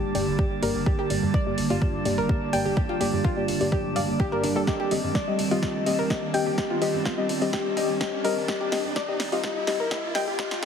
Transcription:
Already playing: synth stab G2 A#3 G4 D5, analog synth pad D3 G3 A#3, synth texture D4 D5, riser
0.03 analog synth bass G1
0.15 analog synth bass F1, synth stab G2 A#3 G4 D5, synth pluck G4, open hi-hat
0.27 analog synth bass G1
0.39 synth stab G2 A#3 G4 D5, synth pluck G4, kick
0.62 analog synth bass G1, synth stab G2 A#3 G4 D5, synth pluck A#4, open hi-hat
0.75 analog synth bass G1
0.86 synth stab G2 A#3 G4 D5, synth pluck G4, kick
0.99 synth pluck G4
1.10 analog synth bass G1, synth stab G2 A#3 G4 D5, open hi-hat
1.23 analog synth bass G2
1.34 synth pluck D5, kick
1.46 synth stab G2 A#3 G4 D5
1.58 analog synth bass G1, open hi-hat
1.70 analog synth bass G1, synth stab G2 A#3 G4 D5, synth pluck F4, open hi-hat
1.82 synth stab G2 A#3 G4 D5, kick
1.94 analog synth bass G1
2.05 analog synth bass F1, synth stab G2 A#3 G4 D5, open hi-hat
2.18 analog synth bass G1, synth pluck A#4
2.29 synth stab G2 A#3 G4 D5, kick
2.53 analog synth bass G1, synth stab G2 A#3 G4 D5, synth pluck G5, open hi-hat
2.65 analog synth bass G1, synth pluck G4
2.77 synth stab G2 A#3 G4 D5, synth pluck G4, kick
2.89 synth pluck F4
3.01 analog synth bass G1, synth stab G2 A#3 G4 D5, synth pluck G4, open hi-hat
3.13 analog synth bass G2
3.24 synth pluck F4, kick
3.37 synth stab G2 A#3 G4 D5
3.48 analog synth bass G1, open hi-hat
3.61 analog synth bass G1, synth stab G2 A#3 G4 D5, open hi-hat
3.72 synth stab G2 A#3 G4 D5, synth pluck G4, kick
3.85 analog synth bass G1
3.96 analog synth bass F1, synth stab G2 A#3 G4 F5, synth pluck D5, open hi-hat
4.08 analog synth bass G1
4.20 synth pluck G4, kick
4.32 synth stab G2 A#3 G4 D5, synth pluck A#4
4.44 analog synth bass G1, synth pluck D4, open hi-hat
4.56 analog synth bass G1, synth stab A#3 G4 D5, synth pluck A4
4.67 analog synth pad D#3 G3 C4, synth stab G3 C4 G4 D#5, synth pluck G4, kick, snare
4.80 synth pluck G4
4.91 analog synth bass G1, synth stab G3 C4 G4 D#5, open hi-hat
5.04 analog synth bass G2
5.15 synth pluck D5, kick, snare
5.27 synth stab G3 C4 G4 D#5
5.39 analog synth bass G1, open hi-hat
5.51 analog synth bass G1, synth stab G3 C4 G4 D#5, synth pluck F4, open hi-hat
5.63 synth stab G3 C4 G4 D#5, kick, snare
5.75 analog synth bass G1
5.86 analog synth bass F1, synth stab G3 C4 G4 D#5, open hi-hat
5.99 analog synth bass G1, synth pluck A#4
6.10 synth stab G3 C4 G4 D#5, kick, snare
6.34 analog synth bass G1, synth stab G3 C4 G4 D#5, synth pluck G5, open hi-hat
6.46 analog synth bass G1, synth pluck G4
6.58 synth stab G3 C4 G4 D#5, synth pluck G4, kick, snare
6.70 synth pluck F4
6.81 analog synth bass G1, synth stab G3 C4 G4 D#5, synth pluck G4, open hi-hat
6.94 analog synth bass G2
7.05 synth pluck F4, kick, snare
7.18 synth stab G3 C4 G4 D#5
7.29 analog synth bass G1, open hi-hat
7.41 analog synth bass G1, synth stab G3 C4 G4 D#5, open hi-hat
7.53 synth stab G3 C4 G4 D#5, synth pluck G4, kick, snare
7.65 analog synth bass G1
7.77 analog synth bass F1, synth stab G3 C4 G4 D#5, synth pluck G4, open hi-hat
7.89 analog synth bass G1
8.00 synth stab G3 C4 G4 D#5, synth pluck G4, kick, snare
8.24 analog synth bass G1, synth stab G3 C4 G4 D#5, synth pluck A#4, open hi-hat
8.37 analog synth bass G1
8.48 synth stab G3 C4 G4 D#5, synth pluck G4, kick, snare
8.61 synth pluck G4
8.72 analog synth bass G1, synth stab G3 C4 G4 D#5, snare, open hi-hat
8.85 analog synth bass G2
8.96 synth pluck D5, kick, snare
9.08 synth stab G3 C4 G4 D#5
9.20 analog synth bass G1, snare, open hi-hat
9.32 analog synth bass G1, synth stab G3 C4 G4 D#5, synth pluck F4, open hi-hat
9.43 synth stab G3 C4 G4 D#5, kick, snare
9.56 analog synth bass G1
9.67 analog synth bass F1, synth stab G3 C4 G4 D#5, snare, open hi-hat
9.80 analog synth bass G1, synth pluck A#4
9.91 synth stab G3 C4 G4 D#5, kick, snare
10.15 analog synth bass G1, synth stab G3 C4 G4 D#5, synth pluck G5, snare, open hi-hat
10.27 analog synth bass G1, synth pluck G4
10.39 synth stab G3 C4 G4 D#5, synth pluck G4, kick, snare
10.51 synth pluck F4, snare

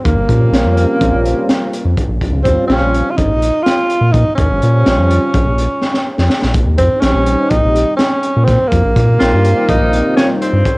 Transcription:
0.04 analog synth bass D#2, analog synth pad G3 C4 C#4 F4, tenor saxophone A#3, kick, closed hi-hat
0.16 analog synth bass G1
0.29 analog synth bass A#2, kick, closed hi-hat
0.52 analog synth bass A#1, snare, closed hi-hat
0.64 analog synth bass F2
0.77 analog synth pad G3 C4 C#4 F4, closed hi-hat
1.01 analog synth bass A#1, kick, closed hi-hat
1.12 analog synth bass A#1
1.25 closed hi-hat
1.49 snare, closed hi-hat
1.73 closed hi-hat
1.85 analog synth bass F2
1.97 kick, closed hi-hat
2.08 analog synth bass A#1
2.21 analog synth bass A#1, analog synth pad G3 C4 C#4 F4, kick, closed hi-hat
2.33 analog synth bass C#2
2.44 analog synth bass D#2, tenor saxophone C4, kick, closed hi-hat
2.68 analog synth bass A#1, tenor saxophone C#4, snare, closed hi-hat
2.81 analog synth bass A#1
2.94 closed hi-hat
3.10 tenor saxophone F4
3.17 analog synth bass G1, tenor saxophone D#4, kick, closed hi-hat
3.29 analog synth bass A#1
3.42 closed hi-hat
3.62 tenor saxophone F4, snare, closed hi-hat
3.90 closed hi-hat
4.01 analog synth bass A#2
4.12 analog synth bass A#2, tenor saxophone D#4, kick, closed hi-hat
4.35 analog synth bass D#2, analog synth pad G3 C#4 F4 C5, tenor saxophone C#4, kick, closed hi-hat
4.51 analog synth bass G1
4.62 analog synth bass A#2, closed hi-hat
4.86 analog synth bass A#1, snare, closed hi-hat
4.98 analog synth bass F2
5.11 closed hi-hat
5.34 analog synth bass A#1, kick, closed hi-hat
5.46 analog synth bass A#1
5.58 closed hi-hat
5.82 snare
5.94 snare
6.18 analog synth bass F2, snare
6.30 snare
6.42 analog synth bass A#1, snare
6.54 analog synth bass A#1, kick, closed hi-hat
6.67 analog synth bass D#2
6.77 analog synth bass F2, analog synth pad G3 D#4 G4 C5, tenor saxophone C4, kick, closed hi-hat
7.01 analog synth bass A#1, tenor saxophone C#4, snare, closed hi-hat
7.14 analog synth bass A#1
7.26 closed hi-hat
7.50 analog synth bass A#1, tenor saxophone D#4, kick, closed hi-hat
7.64 analog synth bass A#1
7.76 closed hi-hat
7.97 tenor saxophone C#4, snare, closed hi-hat
8.23 closed hi-hat
8.36 analog synth bass A#2
8.45 analog synth bass A#2, tenor saxophone C4, kick, snare, closed hi-hat
8.68 tenor saxophone A#3
8.72 analog synth bass F2, kick, closed hi-hat
8.84 analog synth bass A#1
8.95 analog synth bass A#2, analog synth pad G3 C4 D#4 G4, kick, closed hi-hat
9.19 analog synth bass A#1, alto saxophone F4, snare, closed hi-hat
9.33 analog synth bass G2
9.45 closed hi-hat
9.68 analog synth bass A#1, analog synth pad G3 C4 D#4 F4, alto saxophone D#4, kick, closed hi-hat
9.80 analog synth bass A#1
9.93 closed hi-hat
10.16 alto saxophone C#4, snare, closed hi-hat
10.42 alto saxophone C4, closed hi-hat
10.53 analog synth bass G2
10.65 kick, closed hi-hat

